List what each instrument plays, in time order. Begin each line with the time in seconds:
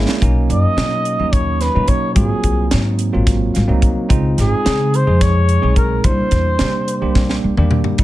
Already playing: tine electric piano G#3 A#3 C#4 E4 E5
0.09 snare
0.21 upright bass B1, tine electric piano F#3 A#3 C#4 D#4, kick, closed hi-hat
0.50 upright bass F#2, trumpet D#5, closed hi-hat
0.64 muted upright bass stroke
0.77 upright bass B2, tine electric piano F#3 A#3 C#4 D#4, snare, closed hi-hat
1.05 closed hi-hat
1.19 upright bass D#2, tine electric piano F#3 A#3 C#4 D#4
1.33 trumpet C#5, kick, closed hi-hat
1.61 trumpet B4, snare, closed hi-hat
1.74 upright bass B2, tine electric piano F#3 A#3 C#4 D#4
1.88 trumpet C#5, kick, closed hi-hat
2.15 upright bass G#1, tine electric piano F#3 A#3 C4 F4, trumpet G#4, kick, closed hi-hat
2.44 upright bass C2, kick, closed hi-hat
2.71 upright bass G#2, tine electric piano F#3 A#3 C4 D#4, snare, closed hi-hat
2.99 closed hi-hat
3.13 upright bass G#1, tine electric piano F#3 A#3 C4 F4
3.27 kick, snare, closed hi-hat
3.54 upright bass G#1, tine electric piano F5, snare, closed hi-hat
3.68 upright bass C2, tine electric piano F#3 A#3 C4 D#4
3.82 kick, closed hi-hat
4.09 upright bass C#2, tine electric piano G#3 C4 D#4 F4, kick, closed hi-hat
4.38 upright bass G#1, trumpet G#4, snare, closed hi-hat
4.52 muted upright bass stroke
4.65 upright bass C#3, tine electric piano G#3 C4 D#4 G#4, snare, closed hi-hat
4.94 trumpet C5, closed hi-hat
5.07 upright bass F2, tine electric piano C3 G#3 D#4 G#4
5.21 trumpet C#5, kick, snare, closed hi-hat
5.49 closed hi-hat
5.62 upright bass B1, tine electric piano G#3 C4 D#4 G#4
5.76 trumpet A#4, kick, closed hi-hat
6.04 upright bass C2, tine electric piano G3 A#3 D4 E4, trumpet C5, kick, closed hi-hat
6.31 upright bass E2, kick, snare, closed hi-hat
6.59 upright bass C3, tine electric piano G3 A#3 D4 G4, snare, closed hi-hat
6.88 closed hi-hat
7.01 upright bass C2, tine electric piano G3 A#3 D4 G4
7.15 kick, snare
7.29 snare
7.44 upright bass C2
7.57 upright bass E2, tine electric piano G3 A#3 D4 G4, mid tom
7.71 mid tom
7.84 floor tom
7.98 upright bass F2, tine electric piano G3 A3 C4 E4, trumpet E4, kick, closed hi-hat